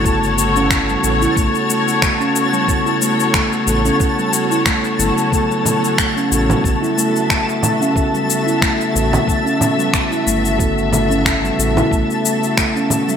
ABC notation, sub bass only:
X:1
M:4/4
L:1/8
Q:"Swing 16ths" 1/4=91
K:Amix
V:1 name="Sub bass" clef=bass
G,,,3 A,,, A,,, z3 | z3 A,,, z3 G,,, | z3 A,,, A,,, z3 | z3 A,,, z3 G,,,- |
G,,,3 A,,, A,,, z3 |]